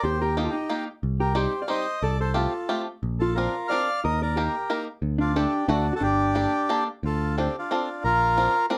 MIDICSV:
0, 0, Header, 1, 5, 480
1, 0, Start_track
1, 0, Key_signature, -2, "minor"
1, 0, Tempo, 333148
1, 50, Time_signature, 3, 2, 24, 8
1, 12649, End_track
2, 0, Start_track
2, 0, Title_t, "Bandoneon"
2, 0, Program_c, 0, 23
2, 43, Note_on_c, 0, 67, 73
2, 44, Note_on_c, 0, 72, 86
2, 280, Note_off_c, 0, 67, 0
2, 302, Note_on_c, 0, 70, 80
2, 304, Note_on_c, 0, 67, 60
2, 306, Note_off_c, 0, 72, 0
2, 518, Note_off_c, 0, 67, 0
2, 529, Note_on_c, 0, 63, 48
2, 540, Note_off_c, 0, 70, 0
2, 552, Note_on_c, 0, 67, 62
2, 620, Note_on_c, 0, 69, 48
2, 626, Note_off_c, 0, 63, 0
2, 638, Note_off_c, 0, 67, 0
2, 721, Note_on_c, 0, 63, 61
2, 730, Note_off_c, 0, 69, 0
2, 731, Note_on_c, 0, 67, 77
2, 1212, Note_off_c, 0, 63, 0
2, 1218, Note_off_c, 0, 67, 0
2, 1727, Note_on_c, 0, 67, 67
2, 1732, Note_on_c, 0, 70, 79
2, 1939, Note_off_c, 0, 67, 0
2, 1962, Note_on_c, 0, 67, 68
2, 1963, Note_on_c, 0, 72, 70
2, 1964, Note_off_c, 0, 70, 0
2, 2312, Note_off_c, 0, 67, 0
2, 2335, Note_on_c, 0, 77, 57
2, 2351, Note_off_c, 0, 72, 0
2, 2429, Note_off_c, 0, 77, 0
2, 2438, Note_on_c, 0, 72, 66
2, 2440, Note_on_c, 0, 75, 91
2, 2875, Note_off_c, 0, 72, 0
2, 2916, Note_on_c, 0, 69, 75
2, 2917, Note_on_c, 0, 74, 90
2, 2923, Note_off_c, 0, 75, 0
2, 3141, Note_off_c, 0, 69, 0
2, 3166, Note_off_c, 0, 74, 0
2, 3174, Note_on_c, 0, 69, 65
2, 3179, Note_on_c, 0, 72, 86
2, 3355, Note_off_c, 0, 69, 0
2, 3370, Note_on_c, 0, 65, 62
2, 3377, Note_on_c, 0, 69, 60
2, 3403, Note_off_c, 0, 72, 0
2, 4063, Note_off_c, 0, 65, 0
2, 4067, Note_off_c, 0, 69, 0
2, 4600, Note_on_c, 0, 69, 81
2, 4622, Note_on_c, 0, 65, 53
2, 4813, Note_off_c, 0, 65, 0
2, 4825, Note_on_c, 0, 70, 76
2, 4835, Note_on_c, 0, 65, 66
2, 4850, Note_off_c, 0, 69, 0
2, 5292, Note_off_c, 0, 65, 0
2, 5301, Note_on_c, 0, 77, 105
2, 5315, Note_on_c, 0, 74, 75
2, 5336, Note_off_c, 0, 70, 0
2, 5772, Note_off_c, 0, 74, 0
2, 5814, Note_off_c, 0, 77, 0
2, 5820, Note_on_c, 0, 75, 85
2, 5825, Note_on_c, 0, 70, 78
2, 6053, Note_off_c, 0, 70, 0
2, 6075, Note_off_c, 0, 75, 0
2, 6081, Note_on_c, 0, 74, 85
2, 6086, Note_on_c, 0, 70, 71
2, 6292, Note_off_c, 0, 70, 0
2, 6311, Note_off_c, 0, 74, 0
2, 6319, Note_on_c, 0, 67, 49
2, 6330, Note_on_c, 0, 70, 67
2, 6979, Note_off_c, 0, 67, 0
2, 6985, Note_off_c, 0, 70, 0
2, 7494, Note_on_c, 0, 62, 59
2, 7499, Note_on_c, 0, 65, 86
2, 7705, Note_off_c, 0, 62, 0
2, 7713, Note_on_c, 0, 67, 71
2, 7730, Note_off_c, 0, 65, 0
2, 7733, Note_on_c, 0, 62, 66
2, 8168, Note_off_c, 0, 62, 0
2, 8206, Note_off_c, 0, 67, 0
2, 8216, Note_on_c, 0, 66, 72
2, 8236, Note_on_c, 0, 62, 51
2, 8552, Note_off_c, 0, 62, 0
2, 8569, Note_off_c, 0, 66, 0
2, 8582, Note_on_c, 0, 69, 86
2, 8590, Note_on_c, 0, 66, 65
2, 8680, Note_off_c, 0, 66, 0
2, 8680, Note_on_c, 0, 67, 92
2, 8686, Note_off_c, 0, 69, 0
2, 8690, Note_on_c, 0, 62, 68
2, 9849, Note_off_c, 0, 67, 0
2, 9854, Note_off_c, 0, 62, 0
2, 10158, Note_on_c, 0, 65, 58
2, 10177, Note_on_c, 0, 69, 92
2, 10603, Note_off_c, 0, 65, 0
2, 10646, Note_on_c, 0, 62, 54
2, 10651, Note_on_c, 0, 67, 68
2, 10661, Note_off_c, 0, 69, 0
2, 10871, Note_off_c, 0, 62, 0
2, 10897, Note_off_c, 0, 67, 0
2, 10928, Note_on_c, 0, 62, 65
2, 10934, Note_on_c, 0, 65, 82
2, 11121, Note_off_c, 0, 62, 0
2, 11135, Note_off_c, 0, 65, 0
2, 11156, Note_on_c, 0, 65, 69
2, 11160, Note_on_c, 0, 62, 66
2, 11578, Note_off_c, 0, 65, 0
2, 11579, Note_off_c, 0, 62, 0
2, 11584, Note_on_c, 0, 70, 110
2, 11600, Note_on_c, 0, 65, 75
2, 12473, Note_off_c, 0, 70, 0
2, 12481, Note_off_c, 0, 65, 0
2, 12649, End_track
3, 0, Start_track
3, 0, Title_t, "Hollow-body jazz guitar"
3, 0, Program_c, 1, 26
3, 69, Note_on_c, 1, 67, 81
3, 294, Note_off_c, 1, 67, 0
3, 313, Note_on_c, 1, 67, 84
3, 523, Note_off_c, 1, 67, 0
3, 560, Note_on_c, 1, 63, 69
3, 636, Note_off_c, 1, 63, 0
3, 642, Note_on_c, 1, 65, 52
3, 734, Note_off_c, 1, 65, 0
3, 763, Note_on_c, 1, 63, 67
3, 1234, Note_off_c, 1, 63, 0
3, 1733, Note_on_c, 1, 67, 73
3, 1942, Note_off_c, 1, 67, 0
3, 1972, Note_on_c, 1, 67, 82
3, 2318, Note_off_c, 1, 67, 0
3, 2332, Note_on_c, 1, 74, 64
3, 2420, Note_off_c, 1, 74, 0
3, 2444, Note_on_c, 1, 72, 71
3, 2879, Note_off_c, 1, 72, 0
3, 2934, Note_on_c, 1, 69, 77
3, 3151, Note_off_c, 1, 69, 0
3, 3180, Note_on_c, 1, 69, 76
3, 3382, Note_off_c, 1, 69, 0
3, 3405, Note_on_c, 1, 65, 65
3, 4082, Note_off_c, 1, 65, 0
3, 4634, Note_on_c, 1, 65, 69
3, 4835, Note_off_c, 1, 65, 0
3, 4852, Note_on_c, 1, 65, 61
3, 5301, Note_off_c, 1, 65, 0
3, 5331, Note_on_c, 1, 74, 59
3, 5780, Note_off_c, 1, 74, 0
3, 5833, Note_on_c, 1, 70, 75
3, 6057, Note_off_c, 1, 70, 0
3, 6079, Note_on_c, 1, 70, 74
3, 6282, Note_on_c, 1, 67, 69
3, 6288, Note_off_c, 1, 70, 0
3, 6960, Note_off_c, 1, 67, 0
3, 7470, Note_on_c, 1, 62, 69
3, 7692, Note_off_c, 1, 62, 0
3, 7726, Note_on_c, 1, 62, 72
3, 8164, Note_off_c, 1, 62, 0
3, 8185, Note_on_c, 1, 62, 68
3, 8525, Note_off_c, 1, 62, 0
3, 8545, Note_on_c, 1, 66, 77
3, 8650, Note_on_c, 1, 62, 89
3, 8656, Note_off_c, 1, 66, 0
3, 9834, Note_off_c, 1, 62, 0
3, 12649, End_track
4, 0, Start_track
4, 0, Title_t, "Five-string banjo"
4, 0, Program_c, 2, 105
4, 534, Note_on_c, 2, 67, 72
4, 539, Note_on_c, 2, 58, 70
4, 543, Note_on_c, 2, 63, 57
4, 549, Note_on_c, 2, 65, 51
4, 785, Note_off_c, 2, 58, 0
4, 785, Note_off_c, 2, 63, 0
4, 785, Note_off_c, 2, 65, 0
4, 785, Note_off_c, 2, 67, 0
4, 1001, Note_on_c, 2, 58, 64
4, 1006, Note_on_c, 2, 63, 50
4, 1008, Note_on_c, 2, 67, 67
4, 1012, Note_on_c, 2, 65, 55
4, 1252, Note_off_c, 2, 58, 0
4, 1254, Note_off_c, 2, 63, 0
4, 1256, Note_off_c, 2, 65, 0
4, 1257, Note_off_c, 2, 67, 0
4, 1944, Note_on_c, 2, 55, 67
4, 1944, Note_on_c, 2, 60, 59
4, 1949, Note_on_c, 2, 67, 64
4, 1954, Note_on_c, 2, 63, 62
4, 2195, Note_off_c, 2, 60, 0
4, 2196, Note_off_c, 2, 55, 0
4, 2198, Note_off_c, 2, 67, 0
4, 2200, Note_off_c, 2, 63, 0
4, 2418, Note_on_c, 2, 55, 62
4, 2422, Note_on_c, 2, 60, 54
4, 2425, Note_on_c, 2, 67, 64
4, 2432, Note_on_c, 2, 63, 64
4, 2670, Note_off_c, 2, 60, 0
4, 2671, Note_off_c, 2, 55, 0
4, 2672, Note_off_c, 2, 63, 0
4, 2673, Note_off_c, 2, 67, 0
4, 3375, Note_on_c, 2, 67, 73
4, 3384, Note_on_c, 2, 57, 51
4, 3388, Note_on_c, 2, 60, 46
4, 3400, Note_on_c, 2, 65, 56
4, 3633, Note_off_c, 2, 60, 0
4, 3633, Note_off_c, 2, 67, 0
4, 3634, Note_off_c, 2, 57, 0
4, 3635, Note_off_c, 2, 65, 0
4, 3875, Note_on_c, 2, 57, 68
4, 3875, Note_on_c, 2, 67, 72
4, 3883, Note_on_c, 2, 60, 54
4, 3886, Note_on_c, 2, 65, 65
4, 4125, Note_off_c, 2, 57, 0
4, 4126, Note_off_c, 2, 65, 0
4, 4127, Note_off_c, 2, 60, 0
4, 4127, Note_off_c, 2, 67, 0
4, 4864, Note_on_c, 2, 60, 58
4, 4864, Note_on_c, 2, 65, 54
4, 4870, Note_on_c, 2, 62, 57
4, 4871, Note_on_c, 2, 70, 69
4, 5108, Note_off_c, 2, 65, 0
4, 5109, Note_off_c, 2, 60, 0
4, 5110, Note_off_c, 2, 62, 0
4, 5112, Note_off_c, 2, 70, 0
4, 5345, Note_on_c, 2, 60, 55
4, 5354, Note_on_c, 2, 65, 61
4, 5361, Note_on_c, 2, 62, 50
4, 5362, Note_on_c, 2, 70, 58
4, 5592, Note_off_c, 2, 60, 0
4, 5592, Note_off_c, 2, 62, 0
4, 5594, Note_off_c, 2, 65, 0
4, 5594, Note_off_c, 2, 70, 0
4, 6296, Note_on_c, 2, 67, 54
4, 6300, Note_on_c, 2, 58, 62
4, 6305, Note_on_c, 2, 70, 71
4, 6308, Note_on_c, 2, 63, 49
4, 6545, Note_off_c, 2, 58, 0
4, 6546, Note_off_c, 2, 67, 0
4, 6547, Note_off_c, 2, 63, 0
4, 6549, Note_off_c, 2, 70, 0
4, 6768, Note_on_c, 2, 67, 55
4, 6769, Note_on_c, 2, 58, 67
4, 6773, Note_on_c, 2, 70, 68
4, 6778, Note_on_c, 2, 63, 58
4, 7015, Note_off_c, 2, 58, 0
4, 7016, Note_off_c, 2, 63, 0
4, 7018, Note_off_c, 2, 67, 0
4, 7018, Note_off_c, 2, 70, 0
4, 7724, Note_on_c, 2, 57, 61
4, 7724, Note_on_c, 2, 67, 60
4, 7729, Note_on_c, 2, 69, 71
4, 7730, Note_on_c, 2, 62, 61
4, 7968, Note_off_c, 2, 57, 0
4, 7969, Note_off_c, 2, 67, 0
4, 7969, Note_off_c, 2, 69, 0
4, 7971, Note_off_c, 2, 62, 0
4, 8194, Note_on_c, 2, 57, 71
4, 8200, Note_on_c, 2, 62, 55
4, 8203, Note_on_c, 2, 66, 62
4, 8204, Note_on_c, 2, 69, 65
4, 8442, Note_off_c, 2, 57, 0
4, 8443, Note_off_c, 2, 62, 0
4, 8445, Note_off_c, 2, 69, 0
4, 8446, Note_off_c, 2, 66, 0
4, 9146, Note_on_c, 2, 58, 59
4, 9151, Note_on_c, 2, 67, 54
4, 9159, Note_on_c, 2, 62, 60
4, 9159, Note_on_c, 2, 69, 74
4, 9403, Note_off_c, 2, 58, 0
4, 9406, Note_off_c, 2, 67, 0
4, 9409, Note_off_c, 2, 62, 0
4, 9410, Note_off_c, 2, 69, 0
4, 9642, Note_on_c, 2, 67, 61
4, 9650, Note_on_c, 2, 58, 73
4, 9652, Note_on_c, 2, 62, 69
4, 9653, Note_on_c, 2, 69, 84
4, 9901, Note_off_c, 2, 62, 0
4, 9903, Note_off_c, 2, 58, 0
4, 9903, Note_off_c, 2, 67, 0
4, 9907, Note_off_c, 2, 69, 0
4, 10627, Note_on_c, 2, 60, 57
4, 10637, Note_on_c, 2, 65, 46
4, 10637, Note_on_c, 2, 69, 73
4, 10641, Note_on_c, 2, 62, 50
4, 10881, Note_off_c, 2, 60, 0
4, 10881, Note_off_c, 2, 62, 0
4, 10882, Note_off_c, 2, 69, 0
4, 10883, Note_off_c, 2, 65, 0
4, 11107, Note_on_c, 2, 60, 71
4, 11114, Note_on_c, 2, 62, 59
4, 11116, Note_on_c, 2, 65, 60
4, 11124, Note_on_c, 2, 69, 71
4, 11358, Note_off_c, 2, 60, 0
4, 11359, Note_off_c, 2, 62, 0
4, 11362, Note_off_c, 2, 65, 0
4, 11365, Note_off_c, 2, 69, 0
4, 12061, Note_on_c, 2, 60, 62
4, 12069, Note_on_c, 2, 65, 62
4, 12073, Note_on_c, 2, 70, 75
4, 12075, Note_on_c, 2, 62, 57
4, 12306, Note_off_c, 2, 60, 0
4, 12308, Note_off_c, 2, 62, 0
4, 12308, Note_off_c, 2, 65, 0
4, 12309, Note_off_c, 2, 70, 0
4, 12536, Note_on_c, 2, 60, 81
4, 12542, Note_on_c, 2, 62, 75
4, 12544, Note_on_c, 2, 65, 71
4, 12549, Note_on_c, 2, 70, 78
4, 12649, Note_off_c, 2, 60, 0
4, 12649, Note_off_c, 2, 62, 0
4, 12649, Note_off_c, 2, 65, 0
4, 12649, Note_off_c, 2, 70, 0
4, 12649, End_track
5, 0, Start_track
5, 0, Title_t, "Picked electric bass"
5, 0, Program_c, 3, 34
5, 50, Note_on_c, 3, 39, 69
5, 675, Note_off_c, 3, 39, 0
5, 1485, Note_on_c, 3, 36, 70
5, 2099, Note_off_c, 3, 36, 0
5, 2916, Note_on_c, 3, 36, 67
5, 3539, Note_off_c, 3, 36, 0
5, 4362, Note_on_c, 3, 34, 74
5, 4995, Note_off_c, 3, 34, 0
5, 5831, Note_on_c, 3, 39, 78
5, 6448, Note_off_c, 3, 39, 0
5, 7232, Note_on_c, 3, 38, 73
5, 7854, Note_off_c, 3, 38, 0
5, 8190, Note_on_c, 3, 38, 90
5, 8500, Note_off_c, 3, 38, 0
5, 8661, Note_on_c, 3, 31, 66
5, 9297, Note_off_c, 3, 31, 0
5, 10132, Note_on_c, 3, 38, 79
5, 10766, Note_off_c, 3, 38, 0
5, 11589, Note_on_c, 3, 34, 69
5, 12203, Note_off_c, 3, 34, 0
5, 12649, End_track
0, 0, End_of_file